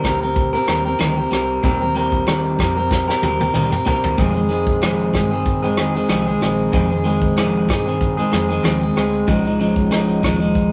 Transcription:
0.03 fingered electric bass D2, clean electric guitar G3 C4 G4 A#4, kick, cross-stick, closed hi-hat, shaker
0.21 clean electric guitar C4 G4 A#4, shaker
0.36 kick, closed hi-hat, shaker
0.53 clean electric guitar C4 G4 A#4, shaker
0.67 fingered electric bass D#2, clean electric guitar G3 C4 G4 A#4, cross-stick, closed hi-hat, shaker
0.85 clean electric guitar C4 G4 A#4, shaker
0.99 fingered electric bass D2, clean electric guitar D#3 G3 C4 G4 A#4, cross-stick, closed hi-hat, shaker
1.16 clean electric guitar C4 G4 A#4, shaker
1.31 fingered electric bass C2, clean electric guitar G3 C4 G4 A#4, cross-stick, closed hi-hat, shaker
1.48 shaker
1.63 fingered electric bass D#2, clean electric guitar D#3 G3 C4 G4 A#4, kick, closed hi-hat, shaker
1.80 clean electric guitar C4 G4 A#4, shaker
1.95 clean electric guitar G3 C4 G4 A#4, closed hi-hat, shaker
2.12 kick, shaker
2.26 clean electric guitar D#3 G3 C4 G4 A#4, cross-stick, closed hi-hat, shaker
2.44 shaker
2.59 fingered electric bass F2, clean electric guitar G3 C4 G4 A#4, kick, cross-stick, closed hi-hat, shaker
2.76 clean electric guitar C4 G4 A#4, shaker
2.91 kick, snare
3.08 clean electric guitar C4 G4 A#4, snare
3.22 fingered electric bass D#2, clean electric guitar G3 C4 G4 A#4, high tom
3.40 clean electric guitar C4 G4 A#4, high tom
3.54 fingered electric bass D2, clean electric guitar D#3 G3 C4 G4 A#4, mid tom
3.71 clean electric guitar C4 G4 A#4, mid tom
3.85 fingered electric bass C2, clean electric guitar G3 C4 G4 A#4, floor tom
4.04 fingered electric bass D#2, floor tom
4.18 clean electric guitar F2 C3 D#3 G#3 C4 G#4, fingered electric bass F2, kick, closed hi-hat, shaker
4.34 clean electric guitar D#3 G#3 C4 G#4, shaker
4.49 clean electric guitar D#3 G#3 C4 G#4, closed hi-hat, shaker
4.67 kick, shaker
4.81 clean electric guitar F2 C3 D#3 G#3 C4 G#4, cross-stick, closed hi-hat, shaker
5.00 shaker
5.13 fingered electric bass G2, clean electric guitar D#3 G#3 C4 G#4, kick, cross-stick, closed hi-hat, shaker
5.31 clean electric guitar D#3 C4 G#4, shaker
5.46 kick, closed hi-hat, shaker
5.63 clean electric guitar D#3 G#3 C4 G#4, shaker
5.77 fingered electric bass F2, clean electric guitar D#3 G#3 C4 G#4, cross-stick, closed hi-hat, shaker
5.94 clean electric guitar D#3 G#3 C4 G#4, shaker
6.08 fingered electric bass C2, clean electric guitar F2 C3 D#3 G#3 C4 G#4, cross-stick, closed hi-hat, shaker
6.26 clean electric guitar D#3 G#3 C4 G#4, shaker
6.41 fingered electric bass A#1, clean electric guitar D#3 G#3 C4 G#4, cross-stick, closed hi-hat, shaker
6.58 shaker
6.72 clean electric guitar F2 C3 D#3 G#3 C4 G#4, fingered electric bass F2, kick, closed hi-hat, shaker
6.90 clean electric guitar D#3 G#3 C4 G#4, shaker
7.04 clean electric guitar D#3 G#3 C4 G#4, closed hi-hat, shaker
7.22 kick, shaker
7.36 clean electric guitar F2 C3 D#3 G#3 C4 G#4, cross-stick, closed hi-hat, shaker
7.55 shaker
7.68 fingered electric bass G2, clean electric guitar D#3 G#3 C4 G#4, kick, cross-stick, closed hi-hat, shaker
7.86 clean electric guitar D#3 C4 G#4, shaker
8.01 kick, closed hi-hat, shaker
8.17 clean electric guitar D#3 G#3 C4 G#4, shaker
8.32 fingered electric bass F2, clean electric guitar D#3 G#3 C4 G#4, cross-stick, closed hi-hat, shaker
8.49 clean electric guitar D#3 G#3 C4 G#4, shaker
8.63 fingered electric bass D#2, clean electric guitar F2 C3 D#3 G#3 C4 G#4, cross-stick, closed hi-hat, shaker
8.81 clean electric guitar D#3 G#3 C4 G#4, shaker
8.96 fingered electric bass D2, clean electric guitar G#3 C4 G#4, cross-stick, closed hi-hat, shaker
9.12 shaker
9.27 fingered electric bass C#2, clean electric guitar C#3 F3 G#3 D#4, kick, closed hi-hat, shaker
9.45 clean electric guitar F3 G#3 D#4, shaker
9.59 clean electric guitar C#3 F3 G#3 D#4, closed hi-hat, shaker
9.76 kick, shaker
9.91 clean electric guitar C#3 F3 G#3 D#4, cross-stick, closed hi-hat, shaker
10.10 shaker
10.22 fingered electric bass D#2, clean electric guitar C#3 F3 G#3 D#4, kick, cross-stick, closed hi-hat, shaker
10.39 clean electric guitar F3 G#3 D#4, shaker
10.55 kick, closed hi-hat, shaker

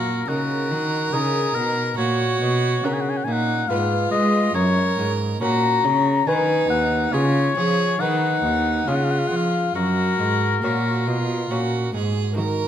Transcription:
Already playing: lute A#2, cello A#2, violin F#4, oboe A#4
0.28 lute C#3 D#4 A#4, cello C#3, oboe F#4, violin A#4
0.71 lute D#3, cello D#3
1.13 lute C#3 D#4 A#4, cello C#3, oboe G#4
1.55 lute B2, cello B2, oboe A#4
1.97 cello A#2, lute A#2, violin F#4, oboe C#5
2.41 lute B2, cello B2
2.84 cello C#3, lute C#3 C#4 A#4, violin C#4, oboe F#5
2.93 oboe G#5
3.01 oboe F#5
3.10 oboe G#5
3.17 oboe F#5
3.24 cello A#2, lute A#2, violin D#4, oboe G#5
3.32 oboe F#5
3.69 lute G#2 B3 B4, cello G#2, violin F4, oboe F5
4.11 cello G#3, lute G#3, oboe D#5
4.54 lute F#2, cello F#2, violin A#4, oboe C#5
4.98 lute G#2, cello G#2
5.41 lute A#2 C#4 A#4, cello A#2, violin F#4, oboe A#5
5.84 lute C#3, cello C#3, violin C#4
6.27 lute D#3 B3 B4, cello D#3, violin D#4, oboe G#5
6.70 lute D#2, cello D#2, oboe F#5
7.13 lute C#3 C#4 G#4, cello C#3, violin F4, oboe C#5
7.57 lute F3, cello F3, violin G#4
8.00 lute D#3 B3 B4, cello D#3, violin D#4, oboe F#5
8.44 cello D#2, lute D#2
8.87 lute C#3 G#3 C#4 G#4, cello C#3, violin F4, oboe F5
8.96 oboe F#5
9.04 oboe F5
9.11 oboe F#5
9.19 oboe F5
9.28 lute F3, cello F3, oboe F#5
9.37 oboe F5
9.75 cello F#2, lute F#2, violin F#4, oboe A#4
10.19 lute G#2, cello G#2
10.63 cello A#2, lute A#2 A#3 C#4 F#4, violin F#4
11.07 cello B2, lute B2, violin F4
11.51 cello A#2, lute A#2 A#3 C#4 F#4, violin F#4
11.94 lute G#2, cello G#2, violin G#4
12.33 lute A#3 D#4 F#4
12.37 lute D#3, cello D#3, violin A#4

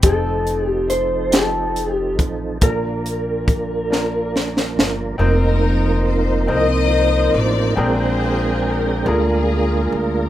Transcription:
0.03 upright bass F1, tonewheel organ F3 C4 D#4 A4, grand piano C4 D#4 F4 A4, electric slide guitar A4, kick, closed hi-hat
0.47 closed hi-hat
0.68 electric slide guitar G4
0.90 electric slide guitar C5, closed hi-hat
1.31 grand piano C4 D#4 F4 G4, electric slide guitar A4, snare, closed hi-hat
1.76 closed hi-hat
1.93 electric slide guitar G4
2.19 upright bass A1, kick, closed hi-hat
2.61 upright bass A#1, grand piano A#2 A#3 D4 F4 A4, tonewheel organ F3 A#3 D4 A#4, electric slide guitar A#4, kick, closed hi-hat
2.70 grand piano A#4
3.06 closed hi-hat
3.48 kick, closed hi-hat
3.90 grand piano A#3 D4 F4 A#4, snare
4.36 snare
4.57 snare
4.76 upright bass G1, snare
5.18 upright bass F1, tonewheel organ F3 A#3 C4 D#4 A#4, grand piano C4 D#4 F4 A#4 C5, string section A#4
5.22 string section D#4
6.07 string section C5
6.47 upright bass C2, grand piano C4 D#4 F4 A#4 C5, string section C5
6.52 string section A#4 D#5
6.57 grand piano D#5
7.34 upright bass A1, string section D5
7.76 upright bass A#1, grand piano A#2 C4 D4 G#4 A#4 G5, tonewheel organ G#3 C4 D4 A#4 G5
7.80 string section F4 G#4 C5
8.68 string section A#4
9.06 upright bass D2, grand piano D3 A#3 D4 F4 G#4 A#4, tonewheel organ G#3 A#3 D4 F4 A#4, string section F4 G#4
9.92 upright bass D2, string section A#4

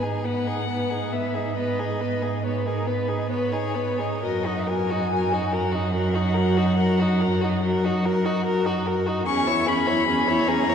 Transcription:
Already playing: cello G#2, violin G#5
0.02 viola D#4, violin G#4
0.25 viola B3, violin B4 F#5
0.47 viola D#4, violin G#4
0.69 viola B3, violin B4
0.90 viola D#4, violin G#4
1.13 viola B3, violin B4 E5
1.34 viola D#4, violin G#4
1.56 viola B3, violin B4 D#5
1.79 viola D#4, violin G#4
2.01 viola B3, violin B4
2.23 viola D#4, violin G#4
2.44 viola B3, violin B4 C#5
2.66 viola D#4, violin G#4 A#4
2.87 viola B3, violin B4
3.08 viola D#4, violin G#4
3.30 viola B3, violin B4 C#5
3.52 viola D#4, violin G#4
3.74 viola B3, violin B4
3.99 viola D#4, violin G#4
4.22 cello F#2, viola F#4, violin A#4 D#5
4.46 viola D#4, violin F#4
4.67 viola F#4, violin A#4 G#5
4.90 viola D#4, violin F#4
5.12 viola F#4, violin A#4
5.32 viola D#4, violin F#4
5.52 viola F#4, violin A#4 F#5
5.73 viola D#4, violin F#4
5.94 viola F#4, violin A#4
6.14 viola D#4, violin F#4
6.34 viola F#4, violin A#4
6.57 viola D#4, violin F#4
6.78 viola F#4, violin A#4
7.00 viola D#4, violin F#4
7.20 viola F#4, violin A#4
7.42 viola D#4, violin F#4
7.63 viola F#4, violin A#4
7.85 viola D#4, violin F#4
8.05 viola F#4, violin A#4
8.25 viola D#4, violin F#4
8.46 viola F#4, violin A#4
8.65 viola D#4, violin F#4
8.87 viola F#4, violin A#4
9.07 viola D#4, violin F#4
9.26 cello E2, viola C#4, violin G#4 C#6
9.47 viola E4, violin C#5
9.66 viola C#4, violin G#4 B5
9.87 viola E4, violin C#5
10.07 viola C#4, violin G#4
10.27 viola E4, violin C#5
10.47 viola C#4, violin G#4 A#5
10.69 viola E4, violin C#5

